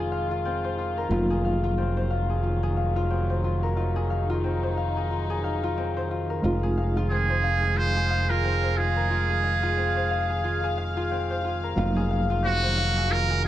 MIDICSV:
0, 0, Header, 1, 6, 480
1, 0, Start_track
1, 0, Tempo, 666667
1, 796, Time_signature, 4, 2, 24, 8
1, 9704, End_track
2, 0, Start_track
2, 0, Title_t, "Muted trumpet"
2, 0, Program_c, 0, 59
2, 5116, Note_on_c, 0, 68, 84
2, 5594, Note_on_c, 0, 72, 96
2, 5605, Note_off_c, 0, 68, 0
2, 5974, Note_on_c, 0, 70, 85
2, 5985, Note_off_c, 0, 72, 0
2, 6316, Note_on_c, 0, 68, 81
2, 6327, Note_off_c, 0, 70, 0
2, 7756, Note_off_c, 0, 68, 0
2, 8964, Note_on_c, 0, 66, 96
2, 9443, Note_on_c, 0, 70, 93
2, 9453, Note_off_c, 0, 66, 0
2, 9679, Note_off_c, 0, 70, 0
2, 9704, End_track
3, 0, Start_track
3, 0, Title_t, "Harp"
3, 0, Program_c, 1, 46
3, 0, Note_on_c, 1, 60, 74
3, 0, Note_on_c, 1, 65, 64
3, 0, Note_on_c, 1, 68, 90
3, 0, Note_on_c, 1, 70, 63
3, 0, Note_on_c, 1, 72, 66
3, 0, Note_on_c, 1, 77, 62
3, 82, Note_off_c, 1, 77, 0
3, 85, Note_on_c, 1, 77, 64
3, 221, Note_off_c, 1, 65, 0
3, 223, Note_on_c, 1, 65, 85
3, 307, Note_off_c, 1, 70, 0
3, 323, Note_off_c, 1, 60, 0
3, 326, Note_on_c, 1, 60, 73
3, 459, Note_off_c, 1, 72, 0
3, 462, Note_on_c, 1, 72, 61
3, 562, Note_off_c, 1, 65, 0
3, 565, Note_on_c, 1, 65, 63
3, 703, Note_on_c, 1, 70, 66
3, 796, Note_off_c, 1, 65, 0
3, 799, Note_on_c, 1, 65, 70
3, 936, Note_off_c, 1, 68, 0
3, 939, Note_on_c, 1, 68, 83
3, 1040, Note_off_c, 1, 77, 0
3, 1043, Note_on_c, 1, 77, 62
3, 1175, Note_off_c, 1, 65, 0
3, 1178, Note_on_c, 1, 65, 87
3, 1277, Note_off_c, 1, 60, 0
3, 1280, Note_on_c, 1, 60, 69
3, 1415, Note_off_c, 1, 72, 0
3, 1418, Note_on_c, 1, 72, 62
3, 1512, Note_off_c, 1, 77, 0
3, 1515, Note_on_c, 1, 77, 63
3, 1650, Note_off_c, 1, 68, 0
3, 1653, Note_on_c, 1, 68, 65
3, 1750, Note_off_c, 1, 65, 0
3, 1753, Note_on_c, 1, 65, 61
3, 1891, Note_off_c, 1, 68, 0
3, 1894, Note_on_c, 1, 68, 89
3, 1991, Note_off_c, 1, 77, 0
3, 1994, Note_on_c, 1, 77, 59
3, 2129, Note_off_c, 1, 65, 0
3, 2132, Note_on_c, 1, 65, 92
3, 2230, Note_off_c, 1, 70, 0
3, 2233, Note_off_c, 1, 60, 0
3, 2236, Note_on_c, 1, 60, 71
3, 2371, Note_off_c, 1, 72, 0
3, 2374, Note_on_c, 1, 72, 62
3, 2474, Note_off_c, 1, 65, 0
3, 2477, Note_on_c, 1, 65, 66
3, 2613, Note_on_c, 1, 70, 64
3, 2708, Note_off_c, 1, 65, 0
3, 2711, Note_on_c, 1, 65, 70
3, 2847, Note_off_c, 1, 68, 0
3, 2850, Note_on_c, 1, 68, 85
3, 2950, Note_off_c, 1, 77, 0
3, 2953, Note_on_c, 1, 77, 60
3, 3090, Note_off_c, 1, 65, 0
3, 3093, Note_on_c, 1, 65, 89
3, 3193, Note_off_c, 1, 60, 0
3, 3196, Note_on_c, 1, 60, 71
3, 3332, Note_off_c, 1, 72, 0
3, 3335, Note_on_c, 1, 72, 67
3, 3433, Note_off_c, 1, 77, 0
3, 3436, Note_on_c, 1, 77, 63
3, 3574, Note_off_c, 1, 68, 0
3, 3577, Note_on_c, 1, 68, 62
3, 3675, Note_off_c, 1, 65, 0
3, 3678, Note_on_c, 1, 65, 59
3, 3812, Note_off_c, 1, 68, 0
3, 3815, Note_on_c, 1, 68, 83
3, 3913, Note_off_c, 1, 77, 0
3, 3916, Note_on_c, 1, 77, 61
3, 4054, Note_off_c, 1, 65, 0
3, 4057, Note_on_c, 1, 65, 89
3, 4140, Note_off_c, 1, 70, 0
3, 4155, Note_off_c, 1, 60, 0
3, 4158, Note_on_c, 1, 60, 76
3, 4293, Note_off_c, 1, 72, 0
3, 4296, Note_on_c, 1, 72, 67
3, 4395, Note_off_c, 1, 65, 0
3, 4398, Note_on_c, 1, 65, 64
3, 4535, Note_on_c, 1, 70, 64
3, 4631, Note_off_c, 1, 65, 0
3, 4634, Note_on_c, 1, 65, 66
3, 4772, Note_off_c, 1, 68, 0
3, 4775, Note_on_c, 1, 68, 83
3, 4875, Note_off_c, 1, 77, 0
3, 4878, Note_on_c, 1, 77, 60
3, 5014, Note_off_c, 1, 65, 0
3, 5017, Note_on_c, 1, 65, 93
3, 5114, Note_off_c, 1, 60, 0
3, 5117, Note_on_c, 1, 60, 69
3, 5251, Note_off_c, 1, 72, 0
3, 5254, Note_on_c, 1, 72, 65
3, 5350, Note_off_c, 1, 77, 0
3, 5353, Note_on_c, 1, 77, 63
3, 5491, Note_off_c, 1, 68, 0
3, 5494, Note_on_c, 1, 68, 66
3, 5593, Note_off_c, 1, 65, 0
3, 5596, Note_on_c, 1, 65, 62
3, 5731, Note_off_c, 1, 68, 0
3, 5734, Note_on_c, 1, 68, 80
3, 5830, Note_off_c, 1, 77, 0
3, 5833, Note_on_c, 1, 77, 63
3, 5974, Note_off_c, 1, 65, 0
3, 5977, Note_on_c, 1, 65, 91
3, 6063, Note_off_c, 1, 70, 0
3, 6075, Note_off_c, 1, 60, 0
3, 6078, Note_on_c, 1, 60, 74
3, 6213, Note_off_c, 1, 72, 0
3, 6216, Note_on_c, 1, 72, 64
3, 6315, Note_off_c, 1, 65, 0
3, 6318, Note_on_c, 1, 65, 69
3, 6454, Note_on_c, 1, 70, 61
3, 6551, Note_off_c, 1, 65, 0
3, 6554, Note_on_c, 1, 65, 70
3, 6691, Note_off_c, 1, 68, 0
3, 6694, Note_on_c, 1, 68, 88
3, 6792, Note_off_c, 1, 77, 0
3, 6795, Note_on_c, 1, 77, 63
3, 6931, Note_off_c, 1, 65, 0
3, 6933, Note_on_c, 1, 65, 90
3, 7032, Note_off_c, 1, 60, 0
3, 7035, Note_on_c, 1, 60, 74
3, 7171, Note_off_c, 1, 72, 0
3, 7174, Note_on_c, 1, 72, 66
3, 7275, Note_off_c, 1, 77, 0
3, 7277, Note_on_c, 1, 77, 66
3, 7413, Note_off_c, 1, 68, 0
3, 7415, Note_on_c, 1, 68, 67
3, 7515, Note_off_c, 1, 65, 0
3, 7518, Note_on_c, 1, 65, 69
3, 7655, Note_off_c, 1, 68, 0
3, 7658, Note_on_c, 1, 68, 87
3, 7757, Note_off_c, 1, 77, 0
3, 7760, Note_on_c, 1, 77, 65
3, 7894, Note_off_c, 1, 65, 0
3, 7897, Note_on_c, 1, 65, 88
3, 7981, Note_off_c, 1, 70, 0
3, 7997, Note_off_c, 1, 60, 0
3, 8000, Note_on_c, 1, 60, 72
3, 8136, Note_off_c, 1, 72, 0
3, 8139, Note_on_c, 1, 72, 67
3, 8236, Note_off_c, 1, 65, 0
3, 8239, Note_on_c, 1, 65, 70
3, 8377, Note_on_c, 1, 70, 67
3, 8472, Note_off_c, 1, 65, 0
3, 8474, Note_on_c, 1, 65, 71
3, 8611, Note_off_c, 1, 68, 0
3, 8614, Note_on_c, 1, 68, 88
3, 8714, Note_off_c, 1, 77, 0
3, 8717, Note_on_c, 1, 77, 64
3, 8853, Note_off_c, 1, 65, 0
3, 8856, Note_on_c, 1, 65, 90
3, 8952, Note_off_c, 1, 60, 0
3, 8955, Note_on_c, 1, 60, 74
3, 9091, Note_off_c, 1, 72, 0
3, 9094, Note_on_c, 1, 72, 66
3, 9195, Note_off_c, 1, 77, 0
3, 9198, Note_on_c, 1, 77, 69
3, 9335, Note_off_c, 1, 68, 0
3, 9338, Note_on_c, 1, 68, 67
3, 9431, Note_off_c, 1, 65, 0
3, 9434, Note_on_c, 1, 65, 68
3, 9573, Note_off_c, 1, 68, 0
3, 9576, Note_on_c, 1, 68, 89
3, 9674, Note_off_c, 1, 77, 0
3, 9677, Note_on_c, 1, 77, 65
3, 9704, Note_off_c, 1, 60, 0
3, 9704, Note_off_c, 1, 65, 0
3, 9704, Note_off_c, 1, 68, 0
3, 9704, Note_off_c, 1, 70, 0
3, 9704, Note_off_c, 1, 72, 0
3, 9704, Note_off_c, 1, 77, 0
3, 9704, End_track
4, 0, Start_track
4, 0, Title_t, "Reed electric piano"
4, 0, Program_c, 2, 4
4, 0, Note_on_c, 2, 60, 58
4, 0, Note_on_c, 2, 63, 58
4, 0, Note_on_c, 2, 65, 71
4, 771, Note_off_c, 2, 60, 0
4, 775, Note_off_c, 2, 63, 0
4, 779, Note_off_c, 2, 65, 0
4, 787, Note_on_c, 2, 54, 64
4, 794, Note_on_c, 2, 58, 61
4, 804, Note_on_c, 2, 63, 58
4, 811, Note_on_c, 2, 65, 71
4, 4608, Note_off_c, 2, 54, 0
4, 4611, Note_off_c, 2, 58, 0
4, 4616, Note_off_c, 2, 63, 0
4, 4619, Note_off_c, 2, 65, 0
4, 4623, Note_on_c, 2, 56, 70
4, 4632, Note_on_c, 2, 60, 59
4, 4639, Note_on_c, 2, 63, 61
4, 4648, Note_on_c, 2, 65, 73
4, 8446, Note_off_c, 2, 56, 0
4, 8450, Note_off_c, 2, 60, 0
4, 8453, Note_off_c, 2, 63, 0
4, 8458, Note_off_c, 2, 65, 0
4, 8467, Note_on_c, 2, 54, 69
4, 8473, Note_on_c, 2, 58, 64
4, 8480, Note_on_c, 2, 63, 61
4, 8487, Note_on_c, 2, 77, 75
4, 9704, Note_off_c, 2, 54, 0
4, 9704, Note_off_c, 2, 58, 0
4, 9704, Note_off_c, 2, 63, 0
4, 9704, Note_off_c, 2, 77, 0
4, 9704, End_track
5, 0, Start_track
5, 0, Title_t, "String section"
5, 0, Program_c, 3, 48
5, 0, Note_on_c, 3, 51, 69
5, 0, Note_on_c, 3, 56, 68
5, 0, Note_on_c, 3, 65, 79
5, 766, Note_off_c, 3, 56, 0
5, 795, Note_on_c, 3, 54, 67
5, 2687, Note_off_c, 3, 65, 0
5, 2713, Note_on_c, 3, 63, 76
5, 4607, Note_off_c, 3, 54, 0
5, 4616, Note_off_c, 3, 63, 0
5, 4635, Note_on_c, 3, 56, 65
5, 4638, Note_on_c, 3, 77, 76
5, 8446, Note_off_c, 3, 51, 0
5, 8447, Note_off_c, 3, 56, 0
5, 8475, Note_on_c, 3, 51, 75
5, 8475, Note_on_c, 3, 54, 68
5, 9704, Note_off_c, 3, 51, 0
5, 9704, Note_off_c, 3, 54, 0
5, 9704, Note_off_c, 3, 77, 0
5, 9704, End_track
6, 0, Start_track
6, 0, Title_t, "Fingered electric bass"
6, 0, Program_c, 4, 33
6, 0, Note_on_c, 4, 29, 68
6, 780, Note_off_c, 4, 29, 0
6, 797, Note_on_c, 4, 29, 77
6, 4616, Note_off_c, 4, 29, 0
6, 4639, Note_on_c, 4, 29, 72
6, 8458, Note_off_c, 4, 29, 0
6, 8479, Note_on_c, 4, 29, 78
6, 9704, Note_off_c, 4, 29, 0
6, 9704, End_track
0, 0, End_of_file